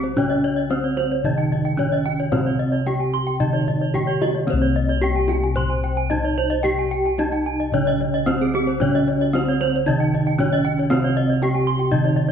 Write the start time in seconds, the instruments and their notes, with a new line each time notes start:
Already playing: bronze metallophone C#3 C4, kettle gongs C#3
0.04 bronze metallophone C5, kendang slap
0.16 bronze metallophone C#3 C#4 C#5, kettle gongs C#4, kendang high, kendang low
0.29 bronze metallophone D#5
0.44 bronze metallophone C#5, kendang slap
0.56 bronze metallophone D#5
0.70 bronze metallophone C4 C5, kettle gongs C#4, kendang slap, kendang high
0.84 bronze metallophone C#5
0.97 bronze metallophone C5, kendang high
1.12 bronze metallophone C#5
1.24 kettle gongs C3, bronze metallophone D#3 D#4 D#5, kendang low
1.38 bronze metallophone G5, kendang slap
1.52 bronze metallophone D#5, kendang slap, kendang low
1.65 bronze metallophone G5
1.77 bronze metallophone C#4 C#5, kettle gongs C#4, kendang slap, kendang high, kendang low
1.92 bronze metallophone D#5
2.06 bronze metallophone G5, kendang slap
2.19 bronze metallophone C#5, kendang slap
2.32 bronze metallophone C3 C4 C5, kettle gongs C4, kendang high, kendang low
2.46 bronze metallophone C#5
2.59 bronze metallophone D#5, kendang slap
2.72 bronze metallophone C#5, kendang slap
2.86 bronze metallophone G4 G5, kendang slap, kendang high
3.00 bronze metallophone G#5
3.14 bronze metallophone C6, kendang slap
3.27 bronze metallophone G5, kendang slap
3.40 kettle gongs C3, bronze metallophone D#3 D#4 D#5, kendang low
3.53 bronze metallophone C#5, kendang slap
3.67 bronze metallophone D#5, kendang slap, kendang low
3.81 bronze metallophone C#5
3.94 kettle gongs C#4, bronze metallophone G4 G5, kendang slap, kendang high, kendang low
4.07 bronze metallophone C#5
4.22 bronze metallophone D#5, kendang slap, kendang high
4.35 bronze metallophone C#5, kendang slap
4.47 bronze metallophone C4 C5, kettle gongs C4, kendang high, kendang low
4.53 kettle gongs C2
4.62 bronze metallophone C#5
4.76 bronze metallophone D#5, kendang slap
4.88 bronze metallophone C#5, kendang slap
5.01 kettle gongs C#4, bronze metallophone G4 G5, kendang slap, kendang high
5.16 bronze metallophone G#5
5.28 bronze metallophone G5, kendang high
5.44 bronze metallophone G#5
5.55 bronze metallophone C5 C6, kendang low
5.69 bronze metallophone G#5, kendang slap
5.83 bronze metallophone G5, kendang slap
5.97 bronze metallophone G#5
6.10 kettle gongs C#4, bronze metallophone D#4 D#5, kendang slap, kendang high, kendang low
6.24 bronze metallophone C#5
6.38 bronze metallophone C5, kendang slap
6.50 bronze metallophone D#5, kendang slap
6.63 bronze metallophone G4 G5, kettle gongs G4, kendang high, kendang low
6.79 bronze metallophone G#5
6.91 bronze metallophone G5, kendang slap
7.05 bronze metallophone G#5, kendang slap
7.18 kettle gongs C#4, bronze metallophone D#4 D#5, kendang slap, kendang high
7.32 bronze metallophone G5
7.46 bronze metallophone G#5
7.60 bronze metallophone D#5
7.72 kettle gongs C#3, bronze metallophone C#4 C#5, kendang low
7.86 bronze metallophone D#5, kendang slap
8.00 bronze metallophone C#5, kendang slap, kendang low
8.14 bronze metallophone D#5
8.26 bronze metallophone C4 C5, kettle gongs C#4, kendang slap, kendang high, kendang low
8.41 bronze metallophone G#4
8.54 bronze metallophone G4, kendang slap, kendang high
8.67 bronze metallophone C5, kendang slap
8.80 bronze metallophone C#3 C#4 C#5, kettle gongs C#4, kendang high, kendang low
8.95 bronze metallophone D#5
9.08 bronze metallophone C#5, kendang slap
9.21 bronze metallophone D#5, kendang slap
9.33 bronze metallophone C4 C5, kendang slap, kendang high
9.48 bronze metallophone C#5
9.61 bronze metallophone C5, kendang high
9.76 bronze metallophone C#5
9.86 kettle gongs C3, bronze metallophone D#3 D#4 D#5, kendang low
10.00 bronze metallophone G5
10.14 bronze metallophone D#5, kendang slap, kendang low
10.27 bronze metallophone G5
10.39 bronze metallophone C#4 C#5, kettle gongs C#4, kendang slap, kendang high, kendang low
10.52 bronze metallophone D#5
10.65 bronze metallophone G5, kendang slap
10.78 bronze metallophone C#5, kendang slap
10.90 bronze metallophone C3 C4 C5, kettle gongs C4, kendang high, kendang low
11.04 bronze metallophone C#5
11.17 bronze metallophone D#5, kendang slap
11.30 bronze metallophone C#5, kendang slap
11.42 bronze metallophone G4 G5, kendang slap, kendang high
11.55 bronze metallophone G#5
11.67 bronze metallophone C6, kendang slap
11.79 bronze metallophone G5, kendang slap
11.91 kettle gongs C3, bronze metallophone D#3 D#4 D#5, kendang low
12.04 bronze metallophone C#5, kendang slap
12.16 bronze metallophone D#5, kendang slap, kendang low
12.29 bronze metallophone C#5